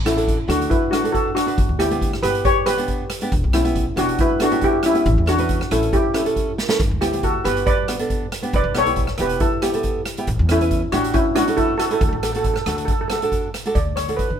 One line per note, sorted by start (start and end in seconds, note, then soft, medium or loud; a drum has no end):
0.00 0.38 A1 medium
0.05 0.46 C#4 medium
0.05 0.12 D4 medium
0.05 0.51 E4 medium
0.05 0.12 F#4 medium
0.05 0.12 A4 medium
0.05 cross-stick medium
0.05 closed hi-hat medium
0.16 0.36 D4 medium
0.16 0.36 F#4 medium
0.16 0.36 A4 medium
0.16 closed hi-hat medium
0.28 kick medium
0.28 closed hi-hat medium
0.48 0.66 D2 medium
0.48 0.75 D4 medium
0.48 0.70 D4 medium
0.48 0.75 F#4 medium
0.48 0.69 F#4 medium
0.48 0.75 A4 medium
0.48 cross-stick medium
0.48 closed hi-hat medium
0.61 closed hi-hat medium
0.70 0.90 E4 medium
0.70 0.91 B4 medium
0.70 kick loud
0.70 closed hi-hat medium
0.91 1.12 D4 medium
0.91 0.99 D4 medium
0.91 1.12 F#4 medium
0.91 1.00 F#4 medium
0.91 1.00 A4 medium
0.91 cross-stick medium
0.91 closed hi-hat medium
1.03 1.30 D4 medium
1.03 1.30 F#4 medium
1.03 1.30 A4 medium
1.03 closed hi-hat medium
1.12 1.34 F#4 medium
1.12 1.36 A4 medium
1.12 kick medium
1.12 closed hi-hat medium
1.35 1.76 D4 medium
1.35 1.80 F#4 medium
1.35 cross-stick medium
1.35 closed hi-hat medium
1.46 1.57 D4 medium
1.46 1.58 F#4 medium
1.46 1.58 B4 medium
1.46 closed hi-hat medium
1.58 1.67 G1 loud
1.58 kick loud
1.58 closed hi-hat medium
1.69 2.12 D2 medium
1.79 1.86 B3 medium
1.79 1.87 D4 medium
1.79 2.20 E4 medium
1.79 2.20 G4 medium
1.79 1.87 G4 medium
1.79 cross-stick medium
1.79 closed hi-hat medium
1.91 2.10 B3 medium
1.91 2.10 D4 medium
1.91 2.10 G4 medium
1.91 closed hi-hat medium
2.02 kick medium
2.02 closed hi-hat medium
2.13 cross-stick medium
2.23 2.40 G1 medium
2.23 2.49 B3 medium
2.23 2.49 D4 medium
2.23 2.49 G4 medium
2.23 2.43 G4 medium
2.23 2.45 B4 loud
2.23 cross-stick medium
2.23 closed hi-hat medium
2.35 closed hi-hat medium
2.45 2.65 G4 medium
2.45 2.67 C#5 loud
2.45 kick loud
2.45 closed hi-hat medium
2.66 2.73 B3 medium
2.66 2.73 D4 medium
2.66 3.07 G4 medium
2.66 2.74 G4 medium
2.66 3.07 B4 loud
2.66 cross-stick medium
2.66 closed hi-hat medium
2.77 3.03 B3 medium
2.77 3.04 D4 medium
2.77 3.04 G4 medium
2.77 closed hi-hat medium
2.88 kick medium
2.88 closed hi-hat medium
3.10 cross-stick medium
3.10 closed hi-hat medium
3.21 3.32 B3 medium
3.21 3.32 D4 medium
3.21 3.32 G4 loud
3.21 closed hi-hat medium
3.32 3.41 E1 loud
3.32 kick loud
3.32 closed hi-hat medium
3.44 3.87 B1 medium
3.53 3.60 B3 medium
3.53 3.94 C#4 medium
3.53 3.98 E4 medium
3.53 3.61 E4 medium
3.53 3.61 G4 medium
3.53 cross-stick medium
3.53 closed hi-hat medium
3.64 3.84 B3 medium
3.64 3.84 E4 medium
3.64 3.84 G4 medium
3.64 closed hi-hat medium
3.75 kick medium
3.75 closed hi-hat medium
3.96 4.15 E1 medium
3.96 4.23 B3 medium
3.96 4.18 D4 medium
3.96 4.23 E4 medium
3.96 4.20 F#4 medium
3.96 4.23 G4 medium
3.96 cross-stick medium
3.96 closed hi-hat medium
4.09 closed hi-hat medium
4.18 4.42 E4 loud
4.18 4.40 B4 medium
4.18 kick loud
4.18 closed hi-hat medium
4.39 4.47 B3 medium
4.39 4.62 D4 medium
4.39 4.47 E4 medium
4.39 4.62 F#4 loud
4.39 4.47 A4 medium
4.39 cross-stick medium
4.39 closed hi-hat medium
4.51 4.77 B3 medium
4.51 4.78 E4 medium
4.51 4.78 G4 medium
4.51 closed hi-hat medium
4.61 4.83 E4 medium
4.61 4.85 G4 loud
4.61 kick medium
4.61 closed hi-hat medium
4.83 5.25 C#4 medium
4.83 5.30 E4 loud
4.83 cross-stick medium
4.83 closed hi-hat medium
4.94 5.05 B3 medium
4.94 5.05 E4 medium
4.94 5.05 G4 medium
4.94 closed hi-hat medium
5.06 5.15 A1 loud
5.06 kick loud
5.06 closed hi-hat medium
5.18 5.61 E2 medium
5.26 5.33 C#4 medium
5.26 5.69 D4 medium
5.26 5.34 E4 medium
5.26 5.69 F#4 medium
5.26 5.34 A4 medium
5.26 cross-stick medium
5.26 closed hi-hat medium
5.38 5.58 C#4 medium
5.38 5.58 E4 medium
5.38 5.58 B4 medium
5.38 closed hi-hat medium
5.49 kick medium
5.49 closed hi-hat medium
5.61 cross-stick medium
5.71 5.89 A1 medium
5.71 5.97 C#4 medium
5.71 5.81 C#4 medium
5.71 5.97 E4 medium
5.71 5.81 E4 medium
5.71 5.97 A4 medium
5.71 cross-stick medium
5.71 closed hi-hat medium
5.83 closed hi-hat medium
5.93 6.13 E4 medium
5.93 6.15 G4 loud
5.93 kick loud
5.93 closed hi-hat medium
6.14 6.21 C#4 medium
6.14 6.55 C#4 medium
6.14 6.55 E4 medium
6.14 6.21 E4 medium
6.14 6.21 A4 medium
6.14 cross-stick medium
6.14 closed hi-hat medium
6.25 6.51 C#4 medium
6.25 6.51 E4 medium
6.25 6.52 A4 medium
6.25 closed hi-hat medium
6.36 kick medium
6.36 closed hi-hat medium
6.58 snare medium
6.69 6.79 C#4 medium
6.69 6.79 E4 medium
6.69 6.79 A4 medium
6.69 snare medium
6.80 6.89 G1 loud
6.80 kick loud
6.80 closed hi-hat medium
6.91 7.35 D2 medium
7.01 7.08 B3 medium
7.01 7.08 D4 medium
7.01 7.21 E4 medium
7.01 7.21 G4 medium
7.01 7.09 G4 medium
7.01 cross-stick medium
7.01 closed hi-hat medium
7.13 7.32 B3 medium
7.13 7.32 D4 medium
7.13 7.33 G4 medium
7.13 closed hi-hat medium
7.23 7.33 F#4 medium
7.23 7.34 A4 medium
7.23 kick medium
7.23 closed hi-hat medium
7.44 7.63 G1 medium
7.44 7.71 B3 medium
7.44 7.71 D4 medium
7.44 7.71 F#4 medium
7.44 7.65 G4 medium
7.44 7.65 B4 loud
7.44 cross-stick medium
7.44 closed hi-hat medium
7.57 closed hi-hat medium
7.66 8.49 B4 medium
7.66 8.49 D5 loud
7.66 kick loud
7.66 closed hi-hat medium
7.88 7.95 B3 medium
7.88 7.95 D4 medium
7.88 7.95 F#4 medium
7.88 cross-stick medium
7.88 closed hi-hat medium
7.99 8.25 B3 medium
7.99 8.25 D4 medium
7.99 8.26 A4 medium
7.99 closed hi-hat medium
8.10 kick medium
8.10 closed hi-hat medium
8.32 cross-stick medium
8.32 closed hi-hat medium
8.42 8.53 B3 medium
8.42 8.53 D4 medium
8.42 8.54 G4 medium
8.42 closed hi-hat medium
8.53 8.63 E1 loud
8.53 8.74 B4 medium
8.53 8.77 D5 loud
8.53 kick loud
8.53 closed hi-hat medium
8.64 9.08 B1 medium
8.74 8.82 B3 medium
8.74 8.82 E4 medium
8.74 8.82 G4 medium
8.74 9.17 A4 medium
8.74 cross-stick medium
8.74 closed hi-hat medium
8.78 9.21 C#5 loud
8.85 9.05 B3 medium
8.85 9.06 E4 medium
8.85 9.06 G4 medium
8.85 closed hi-hat medium
8.96 kick medium
8.96 closed hi-hat medium
9.07 cross-stick medium
9.18 9.36 E1 medium
9.18 9.45 B3 medium
9.18 9.45 E4 medium
9.18 9.45 G4 medium
9.18 9.40 G4 medium
9.18 9.42 B4 medium
9.18 cross-stick medium
9.18 closed hi-hat medium
9.29 closed hi-hat medium
9.40 9.61 E4 medium
9.40 9.61 A4 medium
9.40 kick loud
9.40 closed hi-hat medium
9.62 9.69 B3 medium
9.62 10.03 E4 medium
9.62 9.69 E4 medium
9.62 10.03 G4 medium
9.62 9.70 G4 medium
9.62 cross-stick medium
9.62 closed hi-hat medium
9.74 9.99 B3 medium
9.74 10.00 E4 medium
9.74 10.00 A4 medium
9.74 closed hi-hat medium
9.83 kick medium
9.83 closed hi-hat medium
10.05 cross-stick medium
10.05 closed hi-hat medium
10.17 10.28 B3 medium
10.17 10.28 E4 medium
10.17 10.28 G4 loud
10.17 closed hi-hat medium
10.27 10.37 A1 loud
10.27 kick loud
10.27 closed hi-hat medium
10.39 10.82 E2 medium
10.49 10.56 C#4 medium
10.49 10.91 C#4 medium
10.49 10.57 E4 medium
10.49 10.95 E4 medium
10.49 10.57 A4 medium
10.49 cross-stick medium
10.49 closed hi-hat medium
10.61 10.80 C#4 medium
10.61 10.81 E4 medium
10.61 10.81 B4 medium
10.61 closed hi-hat medium
10.71 kick medium
10.71 closed hi-hat medium
10.92 11.10 A1 loud
10.92 11.19 C#4 medium
10.92 11.13 D4 medium
10.92 11.19 E4 medium
10.92 11.13 F#4 medium
10.92 11.20 G4 medium
10.92 cross-stick medium
10.92 closed hi-hat medium
11.04 closed hi-hat medium
11.14 11.34 C#4 medium
11.14 11.37 E4 medium
11.14 kick loud
11.14 closed hi-hat medium
11.35 11.43 C#4 medium
11.35 11.56 D4 medium
11.35 11.44 E4 medium
11.35 11.56 F#4 medium
11.35 11.44 F#4 medium
11.35 cross-stick medium
11.35 closed hi-hat medium
11.48 11.73 C#4 medium
11.48 11.74 E4 medium
11.48 11.74 A4 medium
11.48 closed hi-hat medium
11.57 11.78 E4 medium
11.57 11.76 A4 loud
11.57 kick medium
11.57 closed hi-hat medium
11.78 11.86 F#4 medium
11.78 11.85 A4 loud
11.78 cross-stick medium
11.78 closed hi-hat medium
11.86 11.92 A4 medium
11.90 12.01 C#4 medium
11.90 12.01 E4 medium
11.90 12.01 A4 medium
11.90 12.00 A4 medium
11.90 closed hi-hat medium
12.01 12.10 D2 loud
12.01 12.08 A4 medium
12.01 kick loud
12.01 closed hi-hat medium
12.09 12.56 A1 medium
12.09 12.15 A4 medium
12.16 12.22 A4 medium
12.23 12.30 D4 medium
12.23 12.30 F#4 medium
12.23 12.31 A4 medium
12.23 12.30 A4 medium
12.23 cross-stick medium
12.23 closed hi-hat medium
12.32 12.54 D4 medium
12.32 12.54 F#4 medium
12.32 12.37 A4 medium
12.32 12.55 A4 medium
12.32 closed hi-hat medium
12.38 12.45 A4 medium
12.44 12.53 A4 medium
12.44 kick loud
12.44 closed hi-hat medium
12.54 12.60 A4 medium
12.54 cross-stick medium
12.62 12.68 A4 medium
12.66 12.84 D2 medium
12.66 12.93 D4 medium
12.66 12.93 F#4 medium
12.66 12.93 A4 medium
12.66 12.76 A4 medium
12.66 cross-stick medium
12.66 closed hi-hat medium
12.77 12.84 A4 medium
12.77 closed hi-hat medium
12.85 12.90 A4 medium
12.85 kick loud
12.85 closed hi-hat medium
12.91 12.99 A4 medium
13.01 13.07 A4 medium
13.08 13.17 D4 medium
13.08 13.17 F#4 medium
13.08 13.14 A4 medium
13.08 13.18 A4 medium
13.08 cross-stick medium
13.08 closed hi-hat medium
13.16 13.22 A4 medium
13.22 13.48 D4 medium
13.22 13.48 F#4 medium
13.22 13.48 A4 medium
13.22 closed hi-hat medium
13.32 kick medium
13.32 closed hi-hat medium
13.54 cross-stick medium
13.54 closed hi-hat medium
13.65 13.76 D4 medium
13.65 13.76 F#4 medium
13.65 13.76 A4 loud
13.65 closed hi-hat medium
13.75 14.20 D2 medium
13.75 13.85 D5 medium
13.75 kick loud
13.75 closed hi-hat medium
13.96 14.19 C#5 medium
13.96 cross-stick medium
13.96 closed hi-hat medium
14.08 14.28 D4 medium
14.08 14.28 F#4 medium
14.08 14.28 A4 medium
14.08 closed hi-hat medium
14.17 14.40 B4 medium
14.17 kick medium
14.17 closed hi-hat medium
14.30 14.39 D3 medium